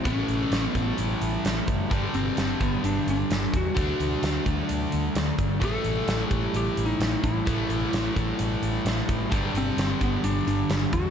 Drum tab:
HH |x-x-x-x-x-x-x-x-|x-x-x-x-x-x-x-x-|x-x-x-x-x-x-x-x-|x-x-x-x-x-x-x-x-|
SD |----o-------o---|----o-------oo--|----o-------o---|----o-------o---|
BD |o-----o-------o-|o-----o-------o-|o-----o-------o-|o-----o-------o-|

HH |x-x-x-x-x-x-x-x-|x-x-x-x-x-x-x-x-|
SD |----o-------oo--|----o-------oo--|
BD |o-----o-------o-|o-----o-------o-|